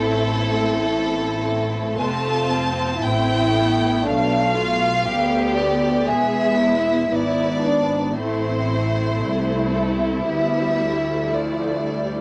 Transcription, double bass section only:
0.00 1.94 A1 medium
1.99 3.00 F1 medium
3.04 4.05 A1 medium
4.06 5.06 B1 medium
5.07 6.09 D2 medium
6.09 7.11 E1 medium
7.11 8.11 G#1 medium
8.14 9.18 A1 medium
9.19 10.28 C2 medium
10.28 12.21 D2 medium

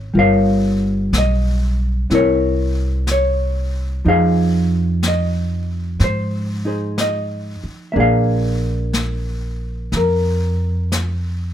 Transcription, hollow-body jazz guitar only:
0.00 0.15 A#3 soft
0.00 0.15 C#4 soft
0.00 0.16 G#4 soft
0.00 0.18 C#5 medium
0.14 2.09 G3 soft
0.14 2.10 F4 soft
0.14 2.11 A#4 soft
0.19 2.12 C#5 soft
0.19 1.10 F5 medium
1.18 2.14 D#5 medium
2.10 4.05 C4 soft
2.10 4.06 E4 soft
2.10 4.07 A#4 soft
2.15 3.10 C#5 medium
3.12 4.08 C#5 medium
4.05 7.95 F3 soft
4.05 6.64 D#4 medium
4.05 6.65 G#4 soft
4.05 5.07 F5 medium
4.10 6.03 C5 soft
5.08 5.99 D#5 medium
6.04 6.66 C5 medium
6.65 7.95 D#4 soft
6.65 7.96 G#4 soft
6.65 7.00 C5 soft
7.01 7.88 D#5 medium
7.92 11.54 A#3 soft
7.92 11.54 D4 medium
7.92 7.96 E5 medium
7.97 11.54 G#4 soft
7.97 9.97 F5 medium
9.97 11.54 A#4 medium

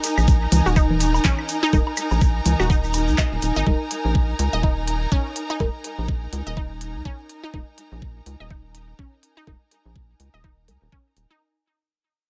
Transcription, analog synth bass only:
0.18 0.47 A#1 medium
0.52 0.62 C#2 medium
0.66 1.19 D#1 medium
1.73 1.83 D#1 loud
2.11 2.40 A#1 medium
2.46 2.55 C#2 loud
2.60 3.10 D#1 medium
3.08 3.15 C#2 medium
3.32 3.39 D#1 medium
3.42 3.52 D#1 medium
3.56 3.63 G#1 medium
3.67 3.76 D#1 medium
4.05 4.34 A#1 medium
4.39 4.49 C#2 loud
4.53 5.07 D#1 medium
5.60 5.70 D#1 loud
5.98 6.27 A#1 medium
6.33 6.42 C#2 medium
6.47 6.97 D#1 medium
6.95 7.02 C#2 medium
7.54 7.63 D#1 medium
7.92 8.21 A#1 medium
8.26 8.36 C#2 medium
8.40 8.94 D#1 medium
9.47 9.57 D#1 medium
9.85 10.15 A#1 medium
10.20 10.29 C#2 medium
10.34 10.70 D#1 medium
10.68 10.78 C#2 medium
10.82 10.89 D#1 loud
11.17 11.26 D#1 medium

